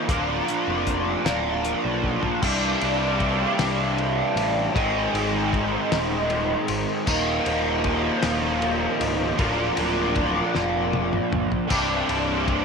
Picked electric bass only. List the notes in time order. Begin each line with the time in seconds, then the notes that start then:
0.08 D1
0.68 F1
1.25 D1
1.85 B1
2.43 C2
2.82 C2
3.59 C2
4.36 A1
4.75 G#1
5.13 G#1
5.92 D#1
6.69 G#1
7.08 D#1
7.46 D#1
8.24 D#1
9.01 C#1
9.39 D1
9.78 D1
10.56 F1
11.32 G1
11.71 C1
12.09 C1